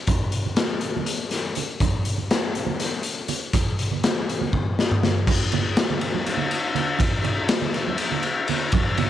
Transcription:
0.07 kick, closed hi-hat, high conga
0.32 closed hi-hat
0.46 low conga
0.56 snare, closed hi-hat
0.81 closed hi-hat
0.96 high conga, low conga
1.06 closed hi-hat
1.20 low conga
1.31 snare, closed hi-hat
1.45 low conga
1.55 closed hi-hat, low conga
1.80 kick, closed hi-hat, high conga
2.05 closed hi-hat
2.18 low conga
2.31 snare, closed hi-hat
2.55 closed hi-hat, low conga
2.67 high conga, low conga
2.80 snare, closed hi-hat
2.93 low conga
3.03 closed hi-hat
3.17 low conga
3.28 closed hi-hat, low conga
3.53 kick, closed hi-hat, high conga
3.79 closed hi-hat
3.91 low conga
4.04 snare, closed hi-hat
4.29 closed hi-hat, low conga
4.41 high conga, low conga
4.53 kick
4.79 snare
4.90 mid tom, low conga
5.03 snare, low conga
5.16 low conga
5.27 kick, crash, high conga, low conga
5.52 ride, low conga
5.65 low conga
5.77 snare, ride
5.90 low conga
6.01 ride
6.14 high conga
6.26 ride, low conga
6.37 low conga
6.51 ride
6.75 ride, low conga
6.99 kick, ride, high conga, low conga
7.24 ride, low conga
7.49 snare, ride
7.62 low conga
7.74 snare, ride
7.88 high conga
7.98 ride, low conga
8.12 low conga
8.23 ride
8.48 ride, low conga
8.72 kick, ride, high conga, low conga
8.97 ride, low conga

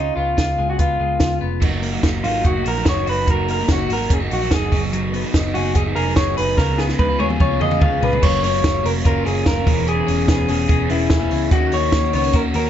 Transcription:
Already playing: C#3 D#4 F4
0.16 C#2 B3 F4
0.37 C#2 F4, kick, snare, closed hi-hat
0.59 C#2 G#3
0.70 F#4
0.79 C#2 B3 F4, kick, closed hi-hat
1.00 C#2 G#3
1.20 C#2 F4, kick, snare, closed hi-hat
1.41 F1 B3
1.61 F#1 F#3 A#3 D#4 F#4, kick, crash
1.82 A#3, open hi-hat
1.92 F#3 A#3 D#4 F#4
2.03 F#1 D#4, kick, snare, closed hi-hat
2.23 G#1 F#3 A#3 D#4 F4 F#4, open hi-hat
2.44 F#1 D#4 F#4, kick, closed hi-hat
2.56 A#3 D#4 F#4
2.64 A#1 F#4 A#4, open hi-hat
2.77 F#3 A#3 D#4 F#4
2.85 F#1 D#4 C#5, kick, snare, closed hi-hat
3.06 F#1 F#4 B4, open hi-hat
3.27 F#1 F#3 A#3 D#4 F#4 A#4, kick, closed hi-hat
3.48 A#3 A#4, open hi-hat
3.60 F#3 A#3 D#4 F#4
3.68 F#1 C#4 F#4, kick, snare, closed hi-hat
3.79 D#4
3.89 G#1 F#3 A#3 D#4 F#4 A#4, open hi-hat
4.10 F#1 C#4 G#4, kick, closed hi-hat
4.20 A#3 D#4 F#4
4.30 A#1 F#4, open hi-hat
4.42 F#3 A#3 D#4 F#4
4.51 F#1 D#4 G#4, kick, snare, closed hi-hat
4.72 F#1 F#3 B3 D#4 G#4, kick, open hi-hat
4.93 F#3, closed hi-hat
5.13 B3, open hi-hat
5.24 F#3 B3 D#4 G#4
5.34 F#1 D#4, kick, snare, closed hi-hat
5.54 F#1 F#3 B3 D#4 F#4 G#4, open hi-hat
5.75 F#1 D#4 G#4, kick, closed hi-hat
5.86 B3 D#4 G#4
5.96 F1 G#4 A#4, open hi-hat
6.06 F#3 B3 D#4 G#4
6.16 F#1 D#4 C#5, kick, snare, closed hi-hat
6.37 F#1 G#4 B4, open hi-hat
6.57 C#2 C#3 G#3 B3 F4 G#4 A#4, kick, snare
6.78 B3 G#4, snare
6.89 C#3 G#3 B3 F4 G#4, snare
6.99 C#2 D#4 B4, kick, high tom
7.09 F4
7.19 D#2 G#3 B3 F4 G#4 C#5, high tom
7.30 mid tom
7.40 C#2 F4 C#5, kick, mid tom
7.50 B3 F4 G#4
7.60 F2 F4 G#4 D#5, mid tom
7.70 C#3 G#3 B3 F4 G#4, mid tom
7.81 C#2 F4 G#4 F5, kick, mid tom
8.01 C#2 G#4 B4, floor tom
8.13 floor tom
8.22 F#1 F#3 A#3 C#4 F4 C#5, kick, crash
8.43 F#1 F#3 A#3 C#4 F4 C#5, open hi-hat
8.63 F#1 A#3, kick, snare, closed hi-hat
8.84 F1 F#3 A#3 C#4 F4 A#4, open hi-hat
9.04 F#1 F#3 A#3 C#4 F4 A#4, kick, closed hi-hat
9.24 F#1 F#3 A#3 C#4 F4 G#4, open hi-hat
9.45 F#1 F4 A#4, kick, snare, closed hi-hat
9.56 A#3 C#4 F4
9.65 E1 E3 B3 C#4 G#4, kick, open hi-hat
9.86 E3 G#4, closed hi-hat
10.06 E1 E3 B3 C#4 G#4, open hi-hat
10.27 E1 B3 G#4, kick, snare, closed hi-hat
10.48 E1 E3 B3 C#4 G#4, open hi-hat
10.69 E1 E3 B3 C#4 G#4, kick, closed hi-hat
10.89 E1 E3 B3 C#4 E4 G#4, open hi-hat
11.10 E1 G#4, kick, snare, closed hi-hat
11.20 B3 C#4 G#4
11.31 C#2 C#4, open hi-hat
11.51 D#2 D#3 A#3 C#4 F#4, kick, closed hi-hat
11.72 D#2 D#3 A#3 C#4 F#4 C#5, open hi-hat
11.92 D#2 A#3, kick, snare, closed hi-hat
12.12 C#2 D#3 A#3 B3 C#4 F#4 C#5, open hi-hat
12.24 C#4
12.33 D#2 D#3 A#3 C#4 F#4 A#4, kick, closed hi-hat
12.54 D#2 D#3 A#3 C#4 F#4 A#4, open hi-hat

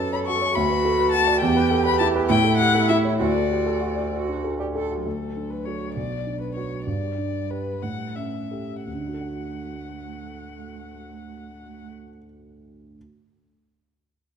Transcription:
Already playing: F#2 A4 C#5 A5
0.00 B4
0.13 C#5 B5
0.26 F#4 C#6
0.42 C#5
0.55 D2 F#4 B5
0.70 B4
0.85 A4
0.99 B4
1.12 F#4 A5
1.27 D5
1.41 E2 G4 G5
1.56 B4
1.71 A4
1.85 B4 B5
1.99 E4 A5
2.15 B4
2.29 A2 E4 G5
2.44 A4
2.58 G4 F#5
2.75 A4
2.89 E4 E5
3.05 C#5
3.20 D2 F#4 D5
3.35 A4
3.51 G4
3.66 A4
3.81 F#4
3.97 D5
4.12 F#4
4.28 D4
4.44 A4
4.60 G4 D5
4.75 A4
4.91 F#4
5.05 D2 F#3 A4
5.36 D4
5.51 B4
5.65 F#4 A4 C#5
5.95 B1 D5
6.26 D4
6.41 B4
6.56 F#4 B4 C#5
6.86 G2 G3 D5
7.18 D4
7.50 G4 B4
7.82 A2 F#5
8.15 C#4 E5
8.51 G4 A4
8.86 D2 A3 F#5
8.93 D3
9.00 D4
9.07 F#4
9.14 A4
9.21 F#5

